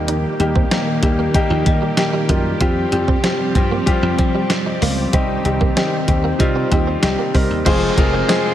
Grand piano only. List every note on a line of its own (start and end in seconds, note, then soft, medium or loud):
0.00 0.27 G3 medium
0.00 0.27 A#3 medium
0.00 0.27 D#4 medium
0.00 0.27 G4 medium
0.39 0.64 G3 medium
0.39 0.65 A#3 medium
0.39 0.65 D#4 medium
0.39 0.65 G4 medium
0.71 0.96 G3 medium
0.71 0.96 A#3 medium
0.71 0.96 D#4 medium
0.71 0.96 G4 medium
1.03 1.27 G3 medium
1.03 1.28 A#3 medium
1.03 1.28 D#4 medium
1.03 1.28 G4 medium
1.34 1.59 G3 loud
1.34 1.59 A#3 medium
1.34 1.59 D#4 loud
1.34 1.60 G4 loud
1.65 1.91 G3 medium
1.65 1.91 A#3 medium
1.65 1.91 D#4 medium
1.65 1.91 G4 medium
1.97 2.22 G3 medium
1.97 2.22 A#3 medium
1.97 2.23 D#4 medium
1.97 2.23 G4 medium
2.29 2.54 G3 medium
2.29 2.54 A#3 medium
2.29 2.54 D#4 medium
2.29 2.54 F4 medium
2.60 2.85 G3 medium
2.60 2.85 C4 medium
2.60 2.86 F4 medium
2.60 2.86 G4 loud
2.92 3.17 G3 medium
2.92 3.17 C4 medium
2.92 3.17 F4 medium
2.92 3.17 G4 medium
3.23 3.48 G3 medium
3.23 3.48 C4 medium
3.23 3.49 F4 medium
3.23 3.49 G4 medium
3.55 3.80 G3 medium
3.55 3.80 C4 medium
3.55 3.80 F4 medium
3.55 3.80 G4 medium
3.86 4.11 G3 loud
3.86 4.12 C4 loud
3.86 4.12 F4 loud
3.86 4.12 G4 loud
4.18 4.43 G3 medium
4.18 4.43 C4 medium
4.18 4.43 F4 medium
4.18 4.44 G4 medium
4.50 4.65 C5 medium
4.66 4.81 D#5 medium
4.82 4.97 F5 medium
4.97 5.28 C5 medium
5.13 5.38 G3 medium
5.13 5.38 C4 medium
5.13 5.38 D#4 medium
5.13 5.38 G4 loud
5.44 5.69 G3 medium
5.44 5.70 C4 medium
5.44 5.70 D#4 medium
5.44 5.70 G4 medium
5.76 6.01 G3 medium
5.76 6.01 C4 medium
5.76 6.01 D#4 medium
5.76 6.02 G4 medium
6.07 6.32 G3 medium
6.07 6.33 C4 medium
6.07 6.33 D#4 medium
6.07 6.33 G4 medium
6.39 6.64 G3 loud
6.39 6.64 C4 loud
6.39 6.65 D#4 loud
6.39 6.65 F4 loud
6.71 6.96 G3 medium
6.71 6.96 C4 medium
6.71 6.96 D#4 medium
6.71 6.96 G4 medium
7.02 7.27 G3 medium
7.02 7.28 C4 medium
7.02 7.28 D#4 medium
7.02 7.28 G4 medium
7.34 7.59 G3 medium
7.34 7.59 C4 medium
7.34 7.59 D#4 medium
7.34 7.59 A#4 medium
7.65 7.90 G#3 loud
7.65 7.91 C4 loud
7.65 7.91 F4 medium
7.65 7.91 G#4 loud
7.65 7.91 C5 loud
7.97 8.22 G#3 medium
7.97 8.22 C4 medium
7.97 8.22 F4 medium
7.97 8.22 G#4 medium
7.97 8.23 A#4 medium
8.28 8.54 G#3 loud
8.28 8.54 C4 loud
8.28 8.54 F4 medium
8.28 8.54 G#4 medium
8.28 8.54 C5 loud